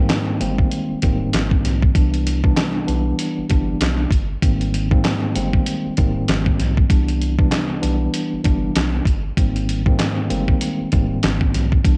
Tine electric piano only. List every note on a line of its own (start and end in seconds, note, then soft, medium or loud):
0.00 0.37 G#2 medium
0.00 0.37 D#3 medium
0.00 0.37 G3 medium
0.00 0.37 A#3 medium
0.00 0.37 C4 loud
0.40 0.98 D#3 medium
0.40 0.98 G3 medium
0.40 0.98 G#3 medium
0.40 0.98 A#3 medium
0.40 0.98 C4 loud
1.02 1.89 G#2 medium
1.02 1.89 D#3 medium
1.02 1.89 G3 medium
1.02 1.89 A#3 medium
1.02 1.89 C4 loud
1.94 2.39 C2 medium
1.94 2.40 E3 medium
1.94 2.40 G3 medium
1.94 2.40 B3 medium
1.94 2.40 D4 loud
2.43 2.84 C2 loud
2.43 2.84 E3 medium
2.43 2.85 G3 medium
2.43 2.85 B3 medium
2.43 2.85 D4 loud
2.87 3.45 E3 medium
2.87 3.45 G3 medium
2.87 3.45 B3 medium
2.87 3.45 D4 loud
3.48 4.07 C2 loud
3.48 4.07 E3 medium
3.48 4.07 G3 medium
3.48 4.07 B3 medium
3.48 4.07 D4 loud
4.42 4.87 G#2 medium
4.42 4.87 D#3 medium
4.42 4.87 G3 medium
4.42 4.88 A#3 medium
4.42 4.88 C4 loud
4.91 5.32 G#2 medium
4.91 5.32 D#3 medium
4.91 5.32 G3 medium
4.91 5.32 A#3 medium
4.91 5.32 C4 loud
5.35 5.93 D#3 medium
5.35 5.93 G3 medium
5.35 5.93 G#3 medium
5.35 5.93 A#3 medium
5.35 5.93 C4 loud
5.97 6.84 G#2 medium
5.97 6.84 D#3 medium
5.97 6.84 G3 medium
5.97 6.84 A#3 medium
5.97 6.84 C4 loud
6.89 7.34 C2 medium
6.89 7.34 E3 medium
6.89 7.34 G3 medium
6.89 7.35 B3 medium
6.89 7.35 D4 loud
7.38 7.79 C2 medium
7.38 7.79 E3 medium
7.38 7.80 G3 medium
7.38 7.80 B3 medium
7.38 7.80 D4 loud
7.81 8.40 E3 medium
7.81 8.40 G3 medium
7.81 8.40 B3 medium
7.81 8.40 D4 loud
8.43 9.02 C2 loud
8.43 9.02 E3 medium
8.43 9.02 G3 medium
8.43 9.02 B3 medium
8.43 9.02 D4 loud
9.37 9.82 G#2 loud
9.37 9.82 D#3 medium
9.37 9.82 G3 medium
9.37 9.82 A#3 medium
9.37 9.83 C4 loud
9.85 10.26 G#2 medium
9.85 10.27 D#3 medium
9.85 10.27 G3 medium
9.85 10.27 A#3 medium
9.85 10.27 C4 loud
10.29 10.88 D#3 medium
10.29 10.88 G3 medium
10.29 10.87 G#3 medium
10.29 10.88 A#3 medium
10.29 10.88 C4 loud
10.92 11.79 G#2 loud
10.92 11.79 D#3 medium
10.92 11.79 G3 medium
10.92 11.79 A#3 medium
10.92 11.79 C4 loud
11.84 11.97 C2 medium
11.84 11.97 E3 medium
11.84 11.97 G3 medium
11.84 11.97 B3 medium
11.84 11.97 D4 loud